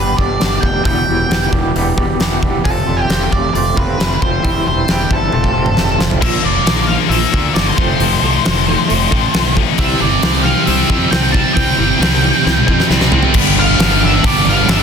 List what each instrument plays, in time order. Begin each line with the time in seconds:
Already playing: fingered electric bass G1, clean electric guitar G3 B3 D4 G4, lead electric guitar B4
0.16 fingered electric bass G1, clean electric guitar G2 D3 G3 B3 D4 G4, lead electric guitar D5, kick
0.39 fingered electric bass G1, clean electric guitar G3 B3 D4 G4, snare, open hi-hat
0.61 fingered electric bass F1, clean electric guitar D4 G4, lead electric guitar G5, kick
0.65 clean electric guitar G3 B3
0.83 fingered electric bass E1, clean electric guitar E2 B2 E3 G3 B3 G4, lead electric guitar G5, kick, open hi-hat
1.06 fingered electric bass E1, clean electric guitar E3 G3 B3 G4
1.29 fingered electric bass E1, clean electric guitar E2 B2 E3 G3 B3 G4, snare, open hi-hat
1.51 fingered electric bass E1, clean electric guitar E3 G3 B3 G4, kick
1.74 fingered electric bass E1, clean electric guitar E3 G3 B3 G4, open hi-hat
1.96 fingered electric bass E1, clean electric guitar E2 B2 E3 G3 B3 G4, kick
2.18 fingered electric bass E1, clean electric guitar E3 G3 B3 G4, snare, open hi-hat
2.41 fingered electric bass E1, clean electric guitar E3 G3 B3 G4, kick
2.63 fingered electric bass F1, clean electric guitar F2 C3 F3 A3 C4 F4, lead electric guitar A4, kick, open hi-hat
2.86 fingered electric bass F1, clean electric guitar F3 A3 C4 F4
2.97 lead electric guitar G4
3.08 fingered electric bass F1, clean electric guitar F2 C3 F3 A3 C4 F4, snare, open hi-hat
3.31 fingered electric bass F1, clean electric guitar F3 A3 C4 F4, lead electric guitar D5, kick
3.53 fingered electric bass F1, clean electric guitar F3 A3 C4 F4, lead electric guitar D5, open hi-hat
3.76 fingered electric bass F1, clean electric guitar F2 C3 F3 A3 C4 F4, lead electric guitar B4, kick
3.99 fingered electric bass F1, clean electric guitar F3 A3 C4 F4, snare, open hi-hat
4.21 fingered electric bass F1, clean electric guitar F3 A3 C4 F4, lead electric guitar C5, kick
4.42 fingered electric bass E1, clean electric guitar E3 G3 C4 E4, kick, open hi-hat
4.66 fingered electric bass E1, clean electric guitar G3 C4 E4, lead electric guitar C5
4.88 fingered electric bass E1, clean electric guitar E3 G3 C4 E4, lead electric guitar G4, snare, open hi-hat
5.10 fingered electric bass G1, clean electric guitar G3 C4 E4, lead electric guitar A4, kick
5.32 fingered electric bass F1, clean electric guitar F2 C3 F3 A3 C4 F4, high tom
5.44 kick
5.53 fingered electric bass F1, clean electric guitar F2 C3 F3 A3 C4 F4
5.66 mid tom
5.75 fingered electric bass F1, clean electric guitar F3 A3 C4 F4, snare
5.98 fingered electric bass F1, clean electric guitar F3 A3 C4 F4, snare
6.11 floor tom
6.21 fingered electric bass A#1, distorted electric guitar A#2 F3 A#3, clean electric guitar A#2 F3 A#3, lead electric guitar E5, kick, crash
6.43 fingered electric bass F1, distorted electric guitar A#2 F3 A#3, clean electric guitar A#2 F3, lead electric guitar D5
6.66 fingered electric bass A#1, distorted electric guitar A#2 F3 A#3, clean electric guitar A#2 F3, snare, open hi-hat
6.87 clean electric guitar A#2 F3, distorted electric guitar A#2 F3 A#3, lead electric guitar F5
7.09 fingered electric bass A#1, distorted electric guitar A#2 F3 A#3, clean electric guitar A#2 F3, lead electric guitar E5, open hi-hat
7.33 fingered electric bass D2, clean electric guitar A#2 F3, distorted electric guitar A#2 F3 A#3, kick
7.54 fingered electric bass G1, clean electric guitar A#2 F3, distorted electric guitar A#2 F3 A#3, lead electric guitar D5, snare, open hi-hat
7.66 lead electric guitar C5
7.77 fingered electric bass F1, distorted electric guitar F2 C3 F3, clean electric guitar F3 A3 C4, lead electric guitar C5, kick
8.00 fingered electric bass F1, distorted electric guitar F2 C3 F3, clean electric guitar F3 A3, open hi-hat
8.22 fingered electric bass C2, distorted electric guitar F2 C3 F3, clean electric guitar F3 A3
8.45 fingered electric bass F1, distorted electric guitar F2 C3 F3, clean electric guitar F3 A3, snare, open hi-hat
8.67 distorted electric guitar F2 C3 F3, clean electric guitar F3 A3
8.88 fingered electric bass F1, distorted electric guitar F2 C3 F3, clean electric guitar F3 A3, open hi-hat
9.11 fingered electric bass A1, distorted electric guitar F2 C3 F3, clean electric guitar F3 A3, kick
9.34 fingered electric bass B1, distorted electric guitar F2 C3 F3, clean electric guitar F3 A3, snare, open hi-hat
9.56 distorted electric guitar F2 C3 F3, clean electric guitar F3 A3, kick
9.78 fingered electric bass C2, distorted electric guitar C3 G3 C4, clean electric guitar C3 E3 G3, lead electric guitar E5, kick, open hi-hat
10.01 fingered electric bass G1, distorted electric guitar C3 G3 C4, clean electric guitar C3 E3, lead electric guitar D5
10.23 fingered electric bass C2, distorted electric guitar C3 G3 C4, clean electric guitar C3 E3, snare, open hi-hat
10.43 distorted electric guitar C3 G3 C4, clean electric guitar C3 E3, lead electric guitar F5
10.66 fingered electric bass C2, distorted electric guitar C3 G3 C4, clean electric guitar C3 E3, lead electric guitar E5, open hi-hat
10.89 fingered electric bass F2, distorted electric guitar C3 G3 C4, clean electric guitar C3 E3, kick
11.11 fingered electric bass C2, clean electric guitar C3 E3, distorted electric guitar C3 G3 C4, lead electric guitar G5, snare, open hi-hat
11.22 lead electric guitar G5
11.32 clean electric guitar C3 E3, distorted electric guitar C3 G3 C4, lead electric guitar A5, kick
11.54 fingered electric bass C2, clean electric guitar C3 E3, distorted electric guitar C3 G3 C4, lead electric guitar G5, kick, open hi-hat
11.78 fingered electric bass G1, clean electric guitar C3 E3, distorted electric guitar C3 G3 C4
12.00 fingered electric bass C2, distorted electric guitar C3 G3 C4, clean electric guitar C3 E3, snare, open hi-hat
12.22 distorted electric guitar C3 G3 C4, clean electric guitar C3 E3
12.44 fingered electric bass C2, distorted electric guitar C3 G3 C4, clean electric guitar C3 E3, snare
12.58 high tom
12.66 fingered electric bass F2, distorted electric guitar C3 G3 C4, clean electric guitar C3 E3, kick
12.80 snare
12.89 fingered electric bass C2, distorted electric guitar C3 G3 C4, clean electric guitar C3 E3, snare
13.01 snare
13.12 distorted electric guitar C3 G3 C4, clean electric guitar C3 E3, floor tom
13.23 floor tom
13.33 fingered electric bass G1, distorted electric guitar G2 D3 G3 B3 D4 G4, kick, crash
13.56 distorted electric guitar G3 B3 D4 G4, lead electric guitar F5
13.78 fingered electric bass G1, distorted electric guitar D3 G3 B3 D4 G4, snare, open hi-hat
13.82 distorted electric guitar G3 D4
14.00 distorted electric guitar G3 B3 D4 G4
14.04 lead electric guitar E5
14.23 fingered electric bass G1, distorted electric guitar G2 D3 G3 B3 D4 G4, lead electric guitar D5, kick, open hi-hat
14.46 fingered electric bass G1, distorted electric guitar G3 B3 D4 G4, lead electric guitar F5
14.68 fingered electric bass G1, distorted electric guitar D3 G3 B3 D4 G4, lead electric guitar E5, snare, open hi-hat